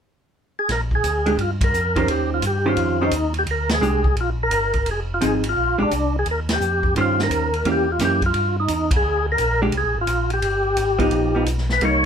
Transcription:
0.59 0.71 G#4 medium
0.69 1.03 A#1 medium
0.69 0.81 A#4 medium
0.69 kick soft
0.69 snare soft
0.69 ride medium
0.91 kick soft
0.95 1.37 G#4 medium
1.04 1.38 D2 medium
1.04 kick soft
1.04 hi-hat pedal medium
1.04 ride medium
1.26 1.37 G#3 medium
1.26 1.38 D4 medium
1.26 1.38 G4 medium
1.26 ride soft
1.38 1.72 G2 medium
1.38 1.51 F4 medium
1.38 kick soft
1.38 ride soft
1.61 2.11 A#4 medium
1.61 kick medium
1.61 ride medium
1.73 2.07 F2 medium
1.73 hi-hat pedal medium
1.96 2.41 D#3 medium
1.96 2.41 C#4 medium
1.96 2.41 G4 medium
1.96 2.41 C5 medium
1.96 kick soft
1.96 ride soft
2.07 2.42 D#2 medium
2.07 2.30 G4 medium
2.07 kick soft
2.07 ride medium
2.34 2.45 F4 medium
2.42 2.77 G2 medium
2.42 kick soft
2.42 hi-hat pedal medium
2.42 ride medium
2.47 2.66 G4 medium
2.66 2.98 D#3 medium
2.66 2.98 C#4 medium
2.66 3.03 F4 medium
2.66 2.98 G4 medium
2.66 2.99 C5 medium
2.77 3.11 F2 medium
2.77 kick soft
2.77 ride soft
3.01 3.12 D#3 medium
3.01 3.12 C#4 medium
3.01 3.33 D#4 medium
3.01 3.12 G4 medium
3.01 3.12 C5 medium
3.11 3.46 D#2 medium
3.11 kick soft
3.11 hi-hat pedal medium
3.11 ride medium
3.34 ride soft
3.39 3.43 G4 medium
3.46 3.81 D2 medium
3.46 kick soft
3.46 ride medium
3.51 3.70 A#4 medium
3.69 snare medium
3.69 ride medium
3.74 4.16 G#4 medium
3.81 4.16 C2 medium
3.81 4.02 G#3 soft
3.81 4.02 D4 medium
3.81 4.03 G4 medium
3.81 hi-hat pedal soft
4.04 kick medium
4.16 4.50 A#1 medium
4.16 kick soft
4.16 ride soft
4.21 4.30 F4 medium
4.43 4.90 A#4 medium
4.51 4.85 G1 medium
4.51 kick soft
4.51 hi-hat pedal soft
4.51 ride medium
4.73 kick soft
4.73 ride soft
4.86 5.20 F1 medium
4.86 kick soft
4.86 ride medium
4.91 5.00 G#4 medium
5.14 5.24 F4 medium
5.21 5.55 G#1 medium
5.21 5.41 F3 soft
5.21 5.42 C4 medium
5.21 5.42 D#4 medium
5.21 5.42 G#4 medium
5.21 kick soft
5.21 hi-hat pedal medium
5.21 ride medium
5.26 5.35 G#4 medium
5.44 ride medium
5.49 5.79 F4 medium
5.56 5.77 A#1 medium
5.56 kick soft
5.78 5.85 A#1 soft
5.78 5.89 G#3 medium
5.78 5.90 D4 medium
5.78 5.90 G4 medium
5.83 6.16 D4 medium
5.91 6.25 C2 medium
5.91 kick soft
5.91 hi-hat pedal medium
5.91 ride medium
6.19 6.28 G#4 medium
6.26 6.59 D#2 medium
6.26 kick soft
6.26 ride medium
6.31 6.40 A#4 medium
6.49 snare medium
6.49 ride medium
6.54 6.95 G4 medium
6.60 6.94 F2 medium
6.60 hi-hat pedal soft
6.83 kick medium
6.96 7.29 G2 medium
6.96 7.49 D#3 medium
6.96 7.49 C#4 medium
6.96 7.49 G4 soft
6.96 7.49 C5 medium
6.96 kick soft
6.96 ride medium
7.01 7.21 F4 medium
7.19 snare soft
7.23 7.69 A#4 medium
7.30 7.64 D#2 medium
7.30 kick soft
7.30 hi-hat pedal soft
7.30 ride medium
7.54 ride soft
7.64 7.98 E2 medium
7.64 7.85 E3 soft
7.64 7.86 A#3 medium
7.64 7.86 C#4 medium
7.64 7.86 G4 medium
7.64 kick soft
7.64 ride soft
7.72 7.91 G4 medium
7.92 8.01 F4 medium
7.99 8.33 F#2 medium
7.99 8.20 E3 soft
7.99 8.21 A#3 soft
7.99 8.20 C#4 medium
7.99 8.21 G4 medium
7.99 kick soft
7.99 snare soft
7.99 hi-hat pedal medium
7.99 ride medium
8.05 8.23 G4 medium
8.22 kick soft
8.22 ride soft
8.26 8.56 F4 medium
8.34 8.68 G2 medium
8.34 kick soft
8.34 ride medium
8.60 8.91 D#4 medium
8.68 9.02 E2 medium
8.68 kick soft
8.68 hi-hat pedal medium
8.68 ride medium
8.91 kick medium
8.91 ride medium
8.96 9.26 G#4 medium
9.02 9.37 D2 medium
9.32 9.61 A#4 loud
9.38 9.72 A#1 medium
9.38 kick soft
9.38 hi-hat pedal medium
9.38 ride medium
9.62 9.72 G#3 medium
9.62 9.72 D4 medium
9.62 9.73 G4 medium
9.72 9.84 C2 medium
9.72 kick soft
9.72 ride soft
9.78 9.98 G#4 medium
9.84 9.96 A#1 medium
9.95 10.06 G#1 medium
10.01 10.31 F4 loud
10.07 10.41 A#1 medium
10.07 kick soft
10.07 hi-hat pedal soft
10.07 ride medium
10.30 11.44 G4 medium
10.30 ride soft
10.42 10.76 G1 medium
10.42 kick soft
10.42 ride medium
10.76 11.10 G#1 medium
10.76 kick soft
10.76 hi-hat pedal soft
10.76 ride medium
10.99 11.32 F3 medium
10.99 11.32 B3 medium
10.99 11.32 D#4 medium
10.99 kick medium
10.99 ride soft
11.11 11.45 A#1 medium
11.11 kick soft
11.11 ride soft
11.35 11.46 F3 medium
11.35 11.46 B3 medium
11.35 11.46 D#4 medium
11.46 11.80 B1 medium
11.46 kick soft
11.46 hi-hat pedal medium
11.46 ride medium
11.58 snare soft
11.69 11.83 B4 medium
11.69 snare soft
11.81 12.06 C2 medium
11.81 12.02 G3 soft
11.81 12.02 A#3 soft
11.81 12.02 D#4 soft
11.81 kick soft
11.81 ride medium
11.85 12.04 C#5 medium

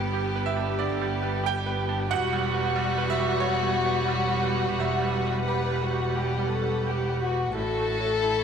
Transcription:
0.00 2.13 G1 medium
0.00 0.76 G2 medium
0.00 1.01 G3 medium
0.00 2.11 G3 soft
0.00 2.08 B3 medium
0.00 2.07 G4 medium
0.00 2.11 G4 soft
0.00 0.35 B4 medium
0.00 2.11 B4 soft
0.13 0.49 G4 medium
0.35 0.71 B4 medium
0.46 0.77 E5 medium
0.56 0.92 D4 medium
0.79 1.14 D3 medium
0.79 1.41 D5 medium
1.01 1.37 G3 medium
1.23 1.58 B4 medium
1.44 1.80 G4 medium
1.44 1.77 G5 loud
1.66 2.02 B4 medium
1.89 2.11 D4 medium
2.11 7.55 E1 medium
2.11 3.38 E2 medium
2.11 7.30 G3 medium
2.11 7.52 G3 medium
2.11 5.38 F#4 loud
2.11 7.51 B4 medium
2.11 3.05 F#5 loud
2.11 7.55 F#5 medium
2.33 2.68 G3 medium
2.54 2.89 B4 medium
2.76 3.11 G3 medium
2.98 3.33 B4 medium
3.10 3.40 E5 loud
3.19 3.55 F#4 medium
3.40 3.77 B2 medium
3.40 4.39 C#5 loud
3.63 3.99 G3 medium
3.85 4.23 B4 medium
4.08 4.46 G3 medium
4.31 4.41 B4 medium
4.43 4.77 B4 medium
4.55 4.93 F#4 soft
4.78 6.13 E2 medium
4.78 6.82 E5 medium
5.01 5.39 G3 soft
5.25 5.62 B4 soft
5.48 5.85 G4 medium
5.48 5.80 B4 medium
5.71 6.08 B4 medium
5.83 6.17 F#4 medium
5.93 6.30 F#4 soft
6.16 6.53 B2 medium
6.16 6.51 G4 medium
6.39 6.76 G3 soft
6.50 6.85 A4 medium
6.62 6.99 B4 soft
6.86 7.23 G4 soft
6.86 7.21 G4 medium
7.08 7.45 B4 soft
7.21 7.54 F#4 medium
7.31 7.54 F#4 soft
7.54 8.44 A1 medium
7.54 8.44 A2 medium
7.54 8.44 A3 soft
7.54 8.44 E4 soft
7.54 8.24 F#4 medium
7.54 8.44 A4 medium
7.54 8.44 E5 soft
7.77 8.13 A3 soft
8.00 8.36 C#5 soft
8.22 8.44 E4 medium
8.22 8.44 A4 soft

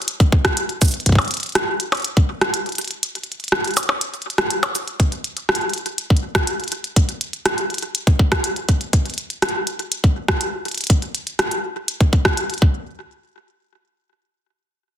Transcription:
0.02 closed hi-hat soft
0.08 closed hi-hat medium
0.20 kick loud
0.20 closed hi-hat soft
0.32 kick loud
0.45 kick medium
0.45 cross-stick loud
0.45 closed hi-hat soft
0.57 closed hi-hat medium
0.69 closed hi-hat soft
0.82 kick medium
0.82 closed hi-hat medium
0.82 cabasa medium
0.85 cabasa soft
0.88 cabasa soft
0.91 closed hi-hat soft
0.91 cabasa soft
1.00 closed hi-hat soft
1.06 kick soft
1.06 closed hi-hat medium
1.09 kick medium
1.12 kick medium
1.12 closed hi-hat soft
1.15 kick medium
1.15 closed hi-hat soft
1.15 percussion blips soft
1.22 closed hi-hat soft
1.25 closed hi-hat soft
1.28 closed hi-hat soft
1.31 closed hi-hat medium
1.34 closed hi-hat soft
1.37 closed hi-hat soft
1.40 closed hi-hat soft
1.43 closed hi-hat soft
1.49 closed hi-hat soft
1.52 cross-stick loud
1.52 closed hi-hat soft
1.55 closed hi-hat medium
1.80 closed hi-hat medium
1.92 closed hi-hat soft
1.92 percussion blips medium
1.95 closed hi-hat soft
1.97 closed hi-hat soft
2.00 closed hi-hat soft
2.02 closed hi-hat soft
2.05 closed hi-hat medium
2.17 kick loud
2.17 closed hi-hat soft
2.41 cross-stick loud
2.41 closed hi-hat soft
2.54 closed hi-hat medium
2.66 closed hi-hat soft
2.69 closed hi-hat soft
2.72 closed hi-hat soft
2.75 closed hi-hat soft
2.78 closed hi-hat medium
2.81 closed hi-hat soft
2.85 closed hi-hat soft
2.88 closed hi-hat soft
2.91 closed hi-hat soft
3.03 closed hi-hat medium
3.15 closed hi-hat soft
3.24 closed hi-hat soft
3.32 closed hi-hat soft
3.40 closed hi-hat soft
3.44 closed hi-hat soft
3.48 closed hi-hat soft
3.52 cross-stick loud
3.64 closed hi-hat soft
3.68 closed hi-hat soft
3.71 closed hi-hat soft
3.74 closed hi-hat soft
3.77 closed hi-hat medium
3.77 cabasa medium
3.77 percussion blips soft
3.83 closed hi-hat soft
3.89 percussion blips medium
4.01 closed hi-hat loud
4.14 closed hi-hat soft
4.22 closed hi-hat soft
4.30 closed hi-hat soft
4.38 cross-stick loud
4.38 closed hi-hat soft
4.51 closed hi-hat loud
4.63 closed hi-hat soft
4.63 percussion blips medium
4.75 closed hi-hat medium
4.75 cabasa medium
4.88 closed hi-hat soft
5.00 kick loud
5.00 closed hi-hat medium
5.12 closed hi-hat soft
5.24 closed hi-hat medium
5.37 closed hi-hat soft
5.49 cross-stick loud
5.55 closed hi-hat medium
5.61 closed hi-hat soft
5.69 closed hi-hat soft
5.74 closed hi-hat medium
5.78 closed hi-hat soft
5.86 closed hi-hat soft
5.98 closed hi-hat medium
6.10 kick loud
6.17 closed hi-hat soft
6.35 kick medium
6.35 cross-stick loud
6.35 closed hi-hat soft
6.47 closed hi-hat loud
6.60 closed hi-hat soft
6.64 closed hi-hat soft
6.68 closed hi-hat soft
6.72 closed hi-hat medium
6.84 closed hi-hat soft
6.96 kick loud
6.96 closed hi-hat medium
7.09 closed hi-hat soft
7.21 closed hi-hat medium
7.33 closed hi-hat soft
7.46 cross-stick loud
7.46 closed hi-hat loud
7.58 closed hi-hat soft
7.70 closed hi-hat soft
7.74 closed hi-hat soft
7.78 closed hi-hat medium
7.83 closed hi-hat soft
7.95 closed hi-hat loud
8.07 kick loud
8.07 closed hi-hat soft
8.19 kick loud
8.32 kick medium
8.32 cross-stick loud
8.32 closed hi-hat soft
8.44 closed hi-hat medium
8.56 closed hi-hat soft
8.69 kick medium
8.69 closed hi-hat medium
8.81 closed hi-hat soft
8.93 kick loud
8.93 closed hi-hat medium
9.06 closed hi-hat soft
9.10 closed hi-hat soft
9.14 closed hi-hat soft
9.18 closed hi-hat medium
9.30 closed hi-hat soft
9.42 cross-stick loud
9.42 closed hi-hat medium
9.49 closed hi-hat soft
9.67 closed hi-hat medium
9.79 closed hi-hat soft
9.92 closed hi-hat medium
10.04 kick loud
10.04 closed hi-hat soft
10.28 kick medium
10.28 cross-stick loud
10.41 closed hi-hat medium
10.65 closed hi-hat soft
10.68 closed hi-hat soft
10.72 closed hi-hat soft
10.75 closed hi-hat soft
10.78 closed hi-hat soft
10.81 closed hi-hat soft
10.84 closed hi-hat medium
10.87 kick loud
10.87 closed hi-hat medium
10.90 closed hi-hat medium
11.02 closed hi-hat soft
11.15 closed hi-hat medium
11.27 closed hi-hat soft
11.39 cross-stick loud
11.39 closed hi-hat medium
11.51 closed hi-hat soft
11.88 closed hi-hat medium
12.01 kick loud
12.01 closed hi-hat soft
12.13 kick loud
12.13 closed hi-hat soft
12.25 kick medium
12.25 cross-stick loud
12.37 closed hi-hat medium
12.50 closed hi-hat soft
12.54 closed hi-hat soft
12.58 closed hi-hat soft
12.62 kick loud

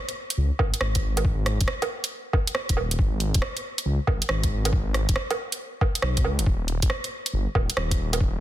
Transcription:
0.09 closed hi-hat soft
0.30 closed hi-hat medium
0.38 0.51 C#2 medium
0.59 0.73 G#1 medium
0.59 kick loud
0.59 low woodblock soft
0.74 closed hi-hat medium
0.81 1.59 G#1 loud
0.81 cross-stick loud
0.95 kick medium
0.95 closed hi-hat soft
1.17 closed hi-hat medium
1.17 low woodblock soft
1.25 kick loud
1.46 cross-stick medium
1.46 closed hi-hat soft
1.61 1.68 D#1 medium
1.61 kick loud
1.61 closed hi-hat medium
1.68 cross-stick loud
1.82 closed hi-hat soft
1.82 low woodblock medium
2.04 closed hi-hat medium
2.33 kick loud
2.33 low woodblock soft
2.47 closed hi-hat medium
2.55 cross-stick loud
2.69 2.98 D#1 medium
2.69 kick medium
2.69 closed hi-hat soft
2.77 low woodblock soft
2.91 closed hi-hat medium
2.99 3.33 G#1 loud
2.99 kick loud
3.20 closed hi-hat soft
3.34 3.42 D#1 medium
3.34 kick loud
3.34 closed hi-hat medium
3.42 cross-stick loud
3.57 closed hi-hat soft
3.78 closed hi-hat medium
3.86 3.99 C#2 medium
4.07 4.21 G#1 medium
4.07 kick loud
4.07 low woodblock soft
4.22 closed hi-hat medium
4.29 5.07 G#1 loud
4.29 cross-stick loud
4.43 kick medium
4.43 closed hi-hat soft
4.65 closed hi-hat medium
4.65 low woodblock soft
4.73 kick loud
4.94 cross-stick medium
4.94 closed hi-hat soft
5.09 5.16 D#1 medium
5.09 kick loud
5.09 closed hi-hat medium
5.16 cross-stick loud
5.31 closed hi-hat soft
5.31 low woodblock medium
5.52 closed hi-hat medium
5.81 kick loud
5.81 low woodblock soft
5.95 closed hi-hat medium
6.02 6.26 B1 medium
6.02 cross-stick loud
6.17 kick medium
6.17 closed hi-hat soft
6.24 6.40 C#2 medium
6.24 low woodblock soft
6.39 6.46 F#1 loud
6.39 closed hi-hat medium
6.46 6.81 D#1 loud
6.46 kick loud
6.68 closed hi-hat soft
6.82 6.89 A#1 medium
6.82 kick loud
6.82 closed hi-hat medium
6.90 cross-stick loud
7.04 closed hi-hat soft
7.26 closed hi-hat soft
7.33 7.47 G1 medium
7.55 7.69 D#1 medium
7.55 kick loud
7.55 low woodblock soft
7.70 closed hi-hat soft
7.77 8.40 D#1 loud
7.77 cross-stick loud
7.91 kick medium
7.91 closed hi-hat soft
8.13 closed hi-hat medium
8.13 low woodblock soft
8.20 kick loud

